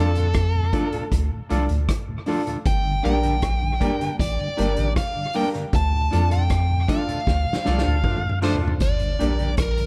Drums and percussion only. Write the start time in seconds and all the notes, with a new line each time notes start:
0.15 closed hi-hat
0.34 kick, cross-stick, closed hi-hat
0.73 kick, closed hi-hat
0.93 closed hi-hat
1.12 kick, closed hi-hat
1.50 closed hi-hat
1.69 closed hi-hat
1.89 kick, cross-stick, closed hi-hat
2.26 open hi-hat
2.47 closed hi-hat
2.66 kick, closed hi-hat
3.05 closed hi-hat
3.23 closed hi-hat
3.42 kick, cross-stick, closed hi-hat
3.81 kick, closed hi-hat
4.01 closed hi-hat
4.19 kick, closed hi-hat
4.58 closed hi-hat
4.77 closed hi-hat
4.96 kick, cross-stick, closed hi-hat
5.33 open hi-hat
5.54 closed hi-hat
5.73 kick, closed hi-hat
6.13 closed hi-hat
6.31 closed hi-hat
6.50 kick, cross-stick, closed hi-hat
6.88 kick, closed hi-hat
7.09 closed hi-hat
7.27 kick, snare
7.53 snare
7.66 snare
7.78 snare
8.04 kick, mid tom
8.17 mid tom
8.29 mid tom
8.55 floor tom
8.68 floor tom
8.80 kick, closed hi-hat
8.99 closed hi-hat
9.20 closed hi-hat
9.39 closed hi-hat
9.57 kick, cross-stick, closed hi-hat
9.78 closed hi-hat